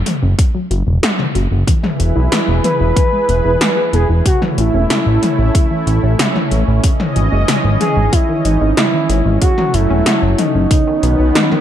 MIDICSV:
0, 0, Header, 1, 6, 480
1, 0, Start_track
1, 0, Key_signature, 4, "major"
1, 0, Tempo, 645161
1, 1248, Time_signature, 4, 2, 24, 8
1, 8636, End_track
2, 0, Start_track
2, 0, Title_t, "Analog synth lead"
2, 0, Program_c, 0, 81
2, 1966, Note_on_c, 0, 71, 121
2, 2897, Note_off_c, 0, 71, 0
2, 2929, Note_on_c, 0, 68, 90
2, 3033, Note_off_c, 0, 68, 0
2, 3172, Note_on_c, 0, 66, 99
2, 3276, Note_off_c, 0, 66, 0
2, 3412, Note_on_c, 0, 64, 88
2, 4100, Note_off_c, 0, 64, 0
2, 5807, Note_on_c, 0, 68, 108
2, 6045, Note_on_c, 0, 64, 102
2, 6056, Note_off_c, 0, 68, 0
2, 6284, Note_on_c, 0, 63, 93
2, 6295, Note_off_c, 0, 64, 0
2, 6520, Note_off_c, 0, 63, 0
2, 6524, Note_on_c, 0, 64, 93
2, 6976, Note_off_c, 0, 64, 0
2, 7005, Note_on_c, 0, 66, 106
2, 7245, Note_on_c, 0, 64, 100
2, 7256, Note_off_c, 0, 66, 0
2, 7727, Note_on_c, 0, 63, 89
2, 7738, Note_off_c, 0, 64, 0
2, 8636, Note_off_c, 0, 63, 0
2, 8636, End_track
3, 0, Start_track
3, 0, Title_t, "Analog synth pad"
3, 0, Program_c, 1, 89
3, 1249, Note_on_c, 1, 64, 68
3, 1249, Note_on_c, 1, 71, 84
3, 1250, Note_on_c, 1, 52, 77
3, 1250, Note_on_c, 1, 68, 70
3, 3149, Note_off_c, 1, 52, 0
3, 3149, Note_off_c, 1, 64, 0
3, 3149, Note_off_c, 1, 71, 0
3, 3150, Note_off_c, 1, 68, 0
3, 3168, Note_on_c, 1, 61, 68
3, 3169, Note_on_c, 1, 57, 79
3, 3170, Note_on_c, 1, 64, 88
3, 5069, Note_off_c, 1, 57, 0
3, 5069, Note_off_c, 1, 64, 0
3, 5087, Note_on_c, 1, 52, 77
3, 5087, Note_on_c, 1, 75, 87
3, 6988, Note_off_c, 1, 52, 0
3, 6988, Note_off_c, 1, 75, 0
3, 7004, Note_on_c, 1, 54, 80
3, 7005, Note_on_c, 1, 57, 69
3, 7956, Note_off_c, 1, 54, 0
3, 7957, Note_off_c, 1, 57, 0
3, 7966, Note_on_c, 1, 51, 75
3, 7966, Note_on_c, 1, 59, 72
3, 8636, Note_off_c, 1, 51, 0
3, 8636, Note_off_c, 1, 59, 0
3, 8636, Note_off_c, 1, 61, 0
3, 8636, End_track
4, 0, Start_track
4, 0, Title_t, "Synth arpeggio sound"
4, 0, Program_c, 2, 84
4, 48, Note_on_c, 2, 57, 77
4, 132, Note_off_c, 2, 57, 0
4, 167, Note_on_c, 2, 61, 77
4, 252, Note_off_c, 2, 61, 0
4, 287, Note_on_c, 2, 49, 98
4, 372, Note_off_c, 2, 49, 0
4, 406, Note_on_c, 2, 54, 99
4, 491, Note_off_c, 2, 54, 0
4, 526, Note_on_c, 2, 66, 70
4, 578, Note_off_c, 2, 66, 0
4, 647, Note_on_c, 2, 49, 76
4, 732, Note_off_c, 2, 49, 0
4, 766, Note_on_c, 2, 69, 79
4, 851, Note_off_c, 2, 69, 0
4, 886, Note_on_c, 2, 49, 76
4, 971, Note_off_c, 2, 49, 0
4, 1005, Note_on_c, 2, 66, 74
4, 1057, Note_off_c, 2, 66, 0
4, 1124, Note_on_c, 2, 49, 73
4, 1177, Note_off_c, 2, 49, 0
4, 1244, Note_on_c, 2, 52, 104
4, 1330, Note_off_c, 2, 52, 0
4, 1363, Note_on_c, 2, 56, 101
4, 1450, Note_off_c, 2, 56, 0
4, 1484, Note_on_c, 2, 59, 76
4, 1570, Note_off_c, 2, 59, 0
4, 1605, Note_on_c, 2, 64, 106
4, 1691, Note_off_c, 2, 64, 0
4, 1726, Note_on_c, 2, 52, 79
4, 1811, Note_off_c, 2, 52, 0
4, 1846, Note_on_c, 2, 56, 74
4, 1931, Note_off_c, 2, 56, 0
4, 1966, Note_on_c, 2, 59, 74
4, 2051, Note_off_c, 2, 59, 0
4, 2085, Note_on_c, 2, 64, 76
4, 2171, Note_off_c, 2, 64, 0
4, 2205, Note_on_c, 2, 52, 104
4, 2291, Note_off_c, 2, 52, 0
4, 2325, Note_on_c, 2, 56, 94
4, 2411, Note_off_c, 2, 56, 0
4, 2445, Note_on_c, 2, 59, 71
4, 2531, Note_off_c, 2, 59, 0
4, 2565, Note_on_c, 2, 64, 101
4, 2651, Note_off_c, 2, 64, 0
4, 2687, Note_on_c, 2, 52, 77
4, 2772, Note_off_c, 2, 52, 0
4, 2806, Note_on_c, 2, 56, 78
4, 2891, Note_off_c, 2, 56, 0
4, 2928, Note_on_c, 2, 59, 75
4, 3012, Note_off_c, 2, 59, 0
4, 3046, Note_on_c, 2, 64, 71
4, 3131, Note_off_c, 2, 64, 0
4, 3168, Note_on_c, 2, 49, 100
4, 3252, Note_off_c, 2, 49, 0
4, 3288, Note_on_c, 2, 52, 103
4, 3372, Note_off_c, 2, 52, 0
4, 3408, Note_on_c, 2, 57, 76
4, 3492, Note_off_c, 2, 57, 0
4, 3529, Note_on_c, 2, 61, 105
4, 3613, Note_off_c, 2, 61, 0
4, 3650, Note_on_c, 2, 49, 82
4, 3733, Note_off_c, 2, 49, 0
4, 3769, Note_on_c, 2, 52, 73
4, 3853, Note_off_c, 2, 52, 0
4, 3888, Note_on_c, 2, 57, 79
4, 3972, Note_off_c, 2, 57, 0
4, 4009, Note_on_c, 2, 61, 79
4, 4093, Note_off_c, 2, 61, 0
4, 4128, Note_on_c, 2, 49, 100
4, 4212, Note_off_c, 2, 49, 0
4, 4248, Note_on_c, 2, 52, 99
4, 4332, Note_off_c, 2, 52, 0
4, 4368, Note_on_c, 2, 57, 71
4, 4452, Note_off_c, 2, 57, 0
4, 4488, Note_on_c, 2, 61, 101
4, 4572, Note_off_c, 2, 61, 0
4, 4609, Note_on_c, 2, 49, 80
4, 4693, Note_off_c, 2, 49, 0
4, 4729, Note_on_c, 2, 52, 77
4, 4813, Note_off_c, 2, 52, 0
4, 4850, Note_on_c, 2, 57, 76
4, 4933, Note_off_c, 2, 57, 0
4, 4970, Note_on_c, 2, 61, 75
4, 5053, Note_off_c, 2, 61, 0
4, 5089, Note_on_c, 2, 49, 104
4, 5173, Note_off_c, 2, 49, 0
4, 5209, Note_on_c, 2, 51, 98
4, 5293, Note_off_c, 2, 51, 0
4, 5328, Note_on_c, 2, 52, 78
4, 5413, Note_off_c, 2, 52, 0
4, 5448, Note_on_c, 2, 56, 101
4, 5532, Note_off_c, 2, 56, 0
4, 5568, Note_on_c, 2, 49, 82
4, 5652, Note_off_c, 2, 49, 0
4, 5688, Note_on_c, 2, 51, 79
4, 5772, Note_off_c, 2, 51, 0
4, 5809, Note_on_c, 2, 52, 78
4, 5893, Note_off_c, 2, 52, 0
4, 5928, Note_on_c, 2, 56, 73
4, 6012, Note_off_c, 2, 56, 0
4, 6048, Note_on_c, 2, 49, 97
4, 6132, Note_off_c, 2, 49, 0
4, 6167, Note_on_c, 2, 51, 94
4, 6252, Note_off_c, 2, 51, 0
4, 6288, Note_on_c, 2, 52, 72
4, 6372, Note_off_c, 2, 52, 0
4, 6407, Note_on_c, 2, 56, 99
4, 6492, Note_off_c, 2, 56, 0
4, 6528, Note_on_c, 2, 49, 81
4, 6612, Note_off_c, 2, 49, 0
4, 6647, Note_on_c, 2, 51, 79
4, 6732, Note_off_c, 2, 51, 0
4, 6768, Note_on_c, 2, 52, 79
4, 6852, Note_off_c, 2, 52, 0
4, 6889, Note_on_c, 2, 56, 77
4, 6973, Note_off_c, 2, 56, 0
4, 7008, Note_on_c, 2, 49, 98
4, 7092, Note_off_c, 2, 49, 0
4, 7128, Note_on_c, 2, 54, 100
4, 7213, Note_off_c, 2, 54, 0
4, 7248, Note_on_c, 2, 57, 76
4, 7332, Note_off_c, 2, 57, 0
4, 7369, Note_on_c, 2, 61, 104
4, 7453, Note_off_c, 2, 61, 0
4, 7489, Note_on_c, 2, 49, 81
4, 7573, Note_off_c, 2, 49, 0
4, 7610, Note_on_c, 2, 54, 77
4, 7693, Note_off_c, 2, 54, 0
4, 7730, Note_on_c, 2, 57, 81
4, 7813, Note_off_c, 2, 57, 0
4, 7851, Note_on_c, 2, 61, 77
4, 7934, Note_off_c, 2, 61, 0
4, 7970, Note_on_c, 2, 49, 101
4, 8053, Note_off_c, 2, 49, 0
4, 8090, Note_on_c, 2, 51, 99
4, 8173, Note_off_c, 2, 51, 0
4, 8209, Note_on_c, 2, 59, 76
4, 8293, Note_off_c, 2, 59, 0
4, 8328, Note_on_c, 2, 54, 77
4, 8379, Note_off_c, 2, 54, 0
4, 8448, Note_on_c, 2, 51, 78
4, 8532, Note_off_c, 2, 51, 0
4, 8569, Note_on_c, 2, 51, 102
4, 8636, Note_off_c, 2, 51, 0
4, 8636, End_track
5, 0, Start_track
5, 0, Title_t, "Analog synth bass"
5, 0, Program_c, 3, 38
5, 167, Note_on_c, 3, 30, 77
5, 259, Note_off_c, 3, 30, 0
5, 526, Note_on_c, 3, 30, 94
5, 618, Note_off_c, 3, 30, 0
5, 646, Note_on_c, 3, 28, 81
5, 738, Note_off_c, 3, 28, 0
5, 1007, Note_on_c, 3, 30, 88
5, 1099, Note_off_c, 3, 30, 0
5, 1127, Note_on_c, 3, 30, 81
5, 1219, Note_off_c, 3, 30, 0
5, 1487, Note_on_c, 3, 28, 94
5, 1579, Note_off_c, 3, 28, 0
5, 1607, Note_on_c, 3, 35, 82
5, 1699, Note_off_c, 3, 35, 0
5, 1846, Note_on_c, 3, 28, 76
5, 1938, Note_off_c, 3, 28, 0
5, 2085, Note_on_c, 3, 28, 76
5, 2178, Note_off_c, 3, 28, 0
5, 2446, Note_on_c, 3, 28, 93
5, 2538, Note_off_c, 3, 28, 0
5, 2566, Note_on_c, 3, 28, 81
5, 2658, Note_off_c, 3, 28, 0
5, 2925, Note_on_c, 3, 28, 86
5, 3018, Note_off_c, 3, 28, 0
5, 3045, Note_on_c, 3, 28, 82
5, 3138, Note_off_c, 3, 28, 0
5, 3406, Note_on_c, 3, 33, 93
5, 3498, Note_off_c, 3, 33, 0
5, 3525, Note_on_c, 3, 28, 83
5, 3618, Note_off_c, 3, 28, 0
5, 3767, Note_on_c, 3, 33, 77
5, 3859, Note_off_c, 3, 33, 0
5, 4006, Note_on_c, 3, 33, 78
5, 4098, Note_off_c, 3, 33, 0
5, 4366, Note_on_c, 3, 33, 93
5, 4458, Note_off_c, 3, 33, 0
5, 4488, Note_on_c, 3, 33, 85
5, 4579, Note_off_c, 3, 33, 0
5, 4847, Note_on_c, 3, 33, 87
5, 4939, Note_off_c, 3, 33, 0
5, 4969, Note_on_c, 3, 33, 79
5, 5059, Note_off_c, 3, 33, 0
5, 5328, Note_on_c, 3, 32, 90
5, 5419, Note_off_c, 3, 32, 0
5, 5447, Note_on_c, 3, 30, 82
5, 5539, Note_off_c, 3, 30, 0
5, 5688, Note_on_c, 3, 32, 74
5, 5779, Note_off_c, 3, 32, 0
5, 5926, Note_on_c, 3, 32, 82
5, 6018, Note_off_c, 3, 32, 0
5, 6287, Note_on_c, 3, 32, 92
5, 6379, Note_off_c, 3, 32, 0
5, 6406, Note_on_c, 3, 32, 84
5, 6498, Note_off_c, 3, 32, 0
5, 6765, Note_on_c, 3, 32, 88
5, 6858, Note_off_c, 3, 32, 0
5, 6886, Note_on_c, 3, 32, 79
5, 6978, Note_off_c, 3, 32, 0
5, 7246, Note_on_c, 3, 30, 93
5, 7338, Note_off_c, 3, 30, 0
5, 7365, Note_on_c, 3, 28, 80
5, 7458, Note_off_c, 3, 28, 0
5, 7607, Note_on_c, 3, 30, 78
5, 7699, Note_off_c, 3, 30, 0
5, 7846, Note_on_c, 3, 30, 80
5, 7938, Note_off_c, 3, 30, 0
5, 8207, Note_on_c, 3, 35, 93
5, 8299, Note_off_c, 3, 35, 0
5, 8326, Note_on_c, 3, 35, 83
5, 8418, Note_off_c, 3, 35, 0
5, 8636, End_track
6, 0, Start_track
6, 0, Title_t, "Drums"
6, 46, Note_on_c, 9, 42, 65
6, 46, Note_on_c, 9, 47, 87
6, 121, Note_off_c, 9, 42, 0
6, 121, Note_off_c, 9, 47, 0
6, 287, Note_on_c, 9, 36, 117
6, 287, Note_on_c, 9, 42, 92
6, 362, Note_off_c, 9, 36, 0
6, 362, Note_off_c, 9, 42, 0
6, 528, Note_on_c, 9, 42, 59
6, 602, Note_off_c, 9, 42, 0
6, 767, Note_on_c, 9, 38, 119
6, 767, Note_on_c, 9, 42, 85
6, 842, Note_off_c, 9, 38, 0
6, 842, Note_off_c, 9, 42, 0
6, 886, Note_on_c, 9, 47, 87
6, 961, Note_off_c, 9, 47, 0
6, 1007, Note_on_c, 9, 42, 60
6, 1081, Note_off_c, 9, 42, 0
6, 1246, Note_on_c, 9, 36, 108
6, 1247, Note_on_c, 9, 42, 83
6, 1321, Note_off_c, 9, 36, 0
6, 1322, Note_off_c, 9, 42, 0
6, 1366, Note_on_c, 9, 47, 88
6, 1440, Note_off_c, 9, 47, 0
6, 1486, Note_on_c, 9, 42, 55
6, 1561, Note_off_c, 9, 42, 0
6, 1726, Note_on_c, 9, 38, 113
6, 1726, Note_on_c, 9, 42, 85
6, 1801, Note_off_c, 9, 38, 0
6, 1801, Note_off_c, 9, 42, 0
6, 1967, Note_on_c, 9, 42, 62
6, 1967, Note_on_c, 9, 47, 88
6, 2041, Note_off_c, 9, 42, 0
6, 2041, Note_off_c, 9, 47, 0
6, 2206, Note_on_c, 9, 36, 111
6, 2207, Note_on_c, 9, 42, 85
6, 2280, Note_off_c, 9, 36, 0
6, 2281, Note_off_c, 9, 42, 0
6, 2447, Note_on_c, 9, 42, 59
6, 2522, Note_off_c, 9, 42, 0
6, 2686, Note_on_c, 9, 38, 120
6, 2686, Note_on_c, 9, 42, 85
6, 2760, Note_off_c, 9, 38, 0
6, 2760, Note_off_c, 9, 42, 0
6, 2927, Note_on_c, 9, 42, 61
6, 3001, Note_off_c, 9, 42, 0
6, 3167, Note_on_c, 9, 36, 103
6, 3167, Note_on_c, 9, 42, 80
6, 3241, Note_off_c, 9, 36, 0
6, 3241, Note_off_c, 9, 42, 0
6, 3288, Note_on_c, 9, 47, 96
6, 3363, Note_off_c, 9, 47, 0
6, 3408, Note_on_c, 9, 42, 58
6, 3482, Note_off_c, 9, 42, 0
6, 3647, Note_on_c, 9, 38, 108
6, 3647, Note_on_c, 9, 42, 83
6, 3722, Note_off_c, 9, 38, 0
6, 3722, Note_off_c, 9, 42, 0
6, 3889, Note_on_c, 9, 42, 63
6, 3889, Note_on_c, 9, 47, 96
6, 3963, Note_off_c, 9, 42, 0
6, 3963, Note_off_c, 9, 47, 0
6, 4127, Note_on_c, 9, 36, 110
6, 4129, Note_on_c, 9, 42, 86
6, 4202, Note_off_c, 9, 36, 0
6, 4203, Note_off_c, 9, 42, 0
6, 4369, Note_on_c, 9, 42, 60
6, 4443, Note_off_c, 9, 42, 0
6, 4608, Note_on_c, 9, 38, 112
6, 4608, Note_on_c, 9, 42, 87
6, 4682, Note_off_c, 9, 38, 0
6, 4682, Note_off_c, 9, 42, 0
6, 4728, Note_on_c, 9, 47, 93
6, 4803, Note_off_c, 9, 47, 0
6, 4847, Note_on_c, 9, 42, 62
6, 4921, Note_off_c, 9, 42, 0
6, 5086, Note_on_c, 9, 42, 87
6, 5087, Note_on_c, 9, 36, 110
6, 5160, Note_off_c, 9, 42, 0
6, 5162, Note_off_c, 9, 36, 0
6, 5207, Note_on_c, 9, 47, 97
6, 5281, Note_off_c, 9, 47, 0
6, 5327, Note_on_c, 9, 42, 59
6, 5401, Note_off_c, 9, 42, 0
6, 5567, Note_on_c, 9, 38, 107
6, 5567, Note_on_c, 9, 42, 88
6, 5642, Note_off_c, 9, 38, 0
6, 5642, Note_off_c, 9, 42, 0
6, 5808, Note_on_c, 9, 42, 63
6, 5808, Note_on_c, 9, 47, 94
6, 5883, Note_off_c, 9, 42, 0
6, 5883, Note_off_c, 9, 47, 0
6, 6047, Note_on_c, 9, 36, 102
6, 6047, Note_on_c, 9, 42, 90
6, 6121, Note_off_c, 9, 36, 0
6, 6121, Note_off_c, 9, 42, 0
6, 6287, Note_on_c, 9, 42, 62
6, 6362, Note_off_c, 9, 42, 0
6, 6527, Note_on_c, 9, 38, 115
6, 6527, Note_on_c, 9, 42, 88
6, 6601, Note_off_c, 9, 38, 0
6, 6601, Note_off_c, 9, 42, 0
6, 6767, Note_on_c, 9, 42, 62
6, 6841, Note_off_c, 9, 42, 0
6, 7005, Note_on_c, 9, 42, 88
6, 7006, Note_on_c, 9, 36, 104
6, 7079, Note_off_c, 9, 42, 0
6, 7081, Note_off_c, 9, 36, 0
6, 7126, Note_on_c, 9, 47, 91
6, 7200, Note_off_c, 9, 47, 0
6, 7246, Note_on_c, 9, 42, 64
6, 7320, Note_off_c, 9, 42, 0
6, 7486, Note_on_c, 9, 38, 107
6, 7486, Note_on_c, 9, 42, 94
6, 7560, Note_off_c, 9, 38, 0
6, 7560, Note_off_c, 9, 42, 0
6, 7726, Note_on_c, 9, 42, 64
6, 7726, Note_on_c, 9, 47, 95
6, 7801, Note_off_c, 9, 42, 0
6, 7801, Note_off_c, 9, 47, 0
6, 7966, Note_on_c, 9, 42, 96
6, 7967, Note_on_c, 9, 36, 111
6, 8041, Note_off_c, 9, 36, 0
6, 8041, Note_off_c, 9, 42, 0
6, 8207, Note_on_c, 9, 42, 61
6, 8281, Note_off_c, 9, 42, 0
6, 8447, Note_on_c, 9, 38, 113
6, 8447, Note_on_c, 9, 42, 89
6, 8522, Note_off_c, 9, 38, 0
6, 8522, Note_off_c, 9, 42, 0
6, 8568, Note_on_c, 9, 47, 92
6, 8636, Note_off_c, 9, 47, 0
6, 8636, End_track
0, 0, End_of_file